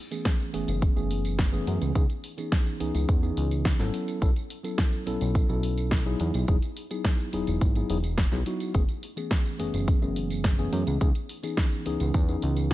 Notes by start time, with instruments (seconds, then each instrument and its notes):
0.11 tine electric piano E3 A3 B3 C#4 G#4, closed hi-hat, tambourine
0.25 kick, snare, closed hi-hat, tambourine
0.40 tambourine
0.53 analog synth bass F#1, tine electric piano E3 A3 B3 C#4 G#4, open hi-hat
0.68 analog synth bass F#1, closed hi-hat, tambourine
0.82 kick, closed hi-hat, tambourine
0.96 analog synth bass F#1, tine electric piano E3 A3 B3 C#4 G#4, tambourine
1.11 open hi-hat
1.25 closed hi-hat, tambourine
1.39 kick, snare, closed hi-hat, tambourine
1.52 tine electric piano E3 A3 B3 C#4 G#4, tambourine
1.67 analog synth bass F#2, open hi-hat
1.81 analog synth bass C#2, closed hi-hat, tambourine
1.95 analog synth bass C#2, tine electric piano E3 B3 C#4 D#4 G#4, kick, closed hi-hat, tambourine
2.10 closed hi-hat, tambourine
2.24 open hi-hat
2.37 tine electric piano E3 B3 C#4 D#4 G#4, closed hi-hat, tambourine
2.52 kick, snare, closed hi-hat, tambourine
2.67 tambourine
2.80 analog synth bass C#2, tine electric piano E3 B3 C#4 D#4 G#4, open hi-hat
2.95 analog synth bass C#2, closed hi-hat, tambourine
3.09 analog synth bass E2, kick, closed hi-hat, tambourine
3.22 tine electric piano E3 B3 C#4 D#4 G#4, tambourine
3.37 analog synth bass C#2, open hi-hat
3.51 closed hi-hat, tambourine
3.65 kick, snare, closed hi-hat, tambourine
3.79 analog synth bass G#1, tine electric piano F#3 B3 C#4 E4 A4, snare, tambourine
3.94 open hi-hat
4.08 closed hi-hat, tambourine
4.21 analog synth bass B1, tine electric piano F#3 B3 C#4 E4 A4, kick, closed hi-hat, tambourine
4.36 closed hi-hat, tambourine
4.50 open hi-hat
4.64 tine electric piano F#3 B3 C#4 E4 A4, closed hi-hat, tambourine
4.78 kick, snare, closed hi-hat, tambourine
4.93 tambourine
5.06 analog synth bass B1, tine electric piano F#3 B3 C#4 E4 A4, open hi-hat
5.21 analog synth bass B1, closed hi-hat, tambourine
5.35 kick, closed hi-hat, tambourine
5.49 analog synth bass B1, tine electric piano F#3 B3 C#4 E4 A4, tambourine
5.63 open hi-hat
5.78 closed hi-hat, tambourine
5.91 kick, snare, closed hi-hat, tambourine
6.05 tine electric piano F#3 B3 D#4 E4 G#4, tambourine
6.20 analog synth bass E2, open hi-hat
6.34 analog synth bass B1, closed hi-hat, tambourine
6.48 analog synth bass E1, tine electric piano F#3 B3 D#4 E4 G#4, kick, closed hi-hat, tambourine
6.62 closed hi-hat, tambourine
6.77 open hi-hat
6.90 tine electric piano F#3 B3 D#4 E4 G#4, closed hi-hat, tambourine
7.05 kick, snare, closed hi-hat, tambourine
7.19 tambourine
7.33 analog synth bass E1, tine electric piano F#3 B3 D#4 E4 G#4, open hi-hat
7.47 analog synth bass E1, closed hi-hat, tambourine
7.61 analog synth bass G#1, kick, closed hi-hat, tambourine
7.75 tine electric piano F#3 B3 D#4 E4 G#4, closed hi-hat, tambourine
7.89 analog synth bass E1, tine electric piano F#3 B3 D#4 E4 G#4, open hi-hat
8.04 closed hi-hat, tambourine
8.18 kick, snare, closed hi-hat, tambourine
8.32 analog synth bass B1, tine electric piano F#3 B3 D#4 E4 G#4, snare, tambourine
8.46 tine electric piano F#3 B3 D#4 E4 F#4, open hi-hat
8.60 closed hi-hat, tambourine
8.74 analog synth bass F#1, tine electric piano E3 A3 B3 C#4 G#4, kick, closed hi-hat, tambourine
8.89 closed hi-hat, tambourine
9.03 open hi-hat
9.16 tine electric piano E3 A3 B3 C#4 G#4, closed hi-hat, tambourine
9.31 kick, snare, closed hi-hat, tambourine
9.46 tambourine
9.59 analog synth bass F#1, tine electric piano E3 A3 B3 C#4 G#4, open hi-hat
9.74 analog synth bass F#1, closed hi-hat, tambourine
9.88 kick, closed hi-hat, tambourine
10.01 analog synth bass F#1, tine electric piano E3 A3 B3 C#4 G#4, tambourine
10.16 open hi-hat
10.30 closed hi-hat, tambourine
10.44 kick, snare, closed hi-hat, tambourine
10.58 tine electric piano E3 A3 B3 C#4 G#4, tambourine
10.73 analog synth bass F#2, open hi-hat
10.87 analog synth bass C#2, closed hi-hat, tambourine
11.00 analog synth bass C#2, tine electric piano E3 B3 C#4 D#4 G#4, kick, closed hi-hat, tambourine
11.15 closed hi-hat, tambourine
11.29 open hi-hat
11.43 tine electric piano E3 B3 C#4 D#4 G#4, closed hi-hat, tambourine
11.57 kick, snare, closed hi-hat, tambourine
11.72 tambourine
11.86 analog synth bass C#2, tine electric piano E3 B3 C#4 D#4 G#4, open hi-hat
12.00 analog synth bass C#2, closed hi-hat, tambourine
12.14 analog synth bass E2, kick, closed hi-hat, tambourine
12.28 tine electric piano E3 B3 C#4 D#4 G#4, tambourine
12.42 analog synth bass C#2, open hi-hat
12.57 closed hi-hat, tambourine